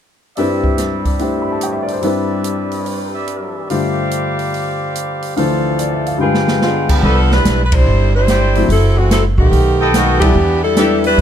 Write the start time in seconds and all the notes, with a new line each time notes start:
0.36 G2 G3 C4 D4 E4 B4 D5 E5, open hi-hat
0.64 kick
0.78 snare, closed hi-hat
1.05 D5 E5, kick, open hi-hat
1.19 A3 D4 E4 G4 C5, open hi-hat
1.42 B5
1.52 A5
1.61 G5, closed hi-hat
1.73 E5
1.83 D5
1.88 open hi-hat
1.93 C5
2.01 G2 G3 C4 D4 B4 D5 E5, open hi-hat
2.05 E4 B4
2.44 closed hi-hat
2.71 open hi-hat
2.86 open hi-hat
3.14 D5 E5
3.28 closed hi-hat
3.70 G2 D3 A3 F4 G4 C5 D5 F5, open hi-hat
4.11 closed hi-hat
4.39 open hi-hat
4.54 open hi-hat
4.95 closed hi-hat
5.22 open hi-hat
5.36 D2 D3 E3 F3 A4 C5 D5 F5, open hi-hat
5.79 D5, closed hi-hat
5.93 E5
6.06 F5, open hi-hat
6.18 G2 D3 G#3 F4 G#4 B4 F5 G5
6.23 B4
6.34 snare
6.48 snare
6.61 G#3 B3 D4 F4, snare
6.89 F3 B3 D4 G4, kick, crash
7.03 C2 F3 B3 D4 A4 B4 C5 D5 E5
7.31 G3 D4 E4 B4, snare
7.45 B1, snare, closed hi-hat
7.65 B4
7.72 G3 D4 E4 C5, kick, ride
7.86 G1
8.15 G3 D4 E4 C5
8.28 C5 D5 G5 B5, snare, closed hi-hat
8.55 F#3 A3 C4 E4, open hi-hat
8.69 F#1 F#3 C4 E4 A4, open hi-hat
8.98 E3 A3 C4 F#4
9.11 F#3 C4 E4 A4, snare, closed hi-hat
9.37 A#1 D#3 A3 B3 G4, kick
9.52 B1, open hi-hat
9.80 A4 B4 D#5 G5
9.94 D#3 A3 B3 F#4, snare, closed hi-hat
10.20 E3 G3 B3 D4 E4 G4, kick, ride
10.35 E2
10.64 G3 D4 E4 A4
10.76 G3 B3 D4 E4 G4 B4 D5 E5, snare, closed hi-hat
11.04 G3 D4 E4 B4, open hi-hat
11.18 G2